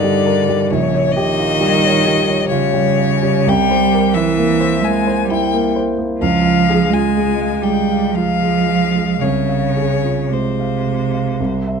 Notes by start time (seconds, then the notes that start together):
Already playing: G2 D3 G3 D#4 G4 A#4 D5
0.04 G3
0.26 A#4
0.49 G3
0.70 A#1 C#3 C#5
0.94 C#5
1.12 D#5
1.16 D#3 G4
1.39 F4
1.61 G3
1.84 C#5
2.06 G3
2.28 C#5
2.49 C#3 F4 C#5
2.74 G3
3.00 C#5
3.22 G3
3.46 C2 G3 G5
3.71 C5
3.94 A#4
4.14 E3 E4 E5
4.38 A#3
4.60 C5
4.80 G#3
4.85 A#3 G#5
5.07 C5
5.25 G3
5.30 E4 G5
5.54 A#3
5.76 C5
5.98 A#3
6.18 C#2 F3
6.22 F5
6.45 F5
6.70 G#4
6.88 G#3
6.93 F4 G#5
7.17 G#3
7.42 F5
7.62 G3 G5
7.68 G#3
7.92 F5
8.12 F3 F5
8.17 F4
8.43 G#3
8.69 F5
8.95 G#3
9.19 C2 C#3 C#5
9.49 F5
9.77 G#4
10.04 F4
10.28 C3 G#3
10.33 C5
10.60 F5
10.87 G#3
11.14 F5
11.40 C2
11.67 E5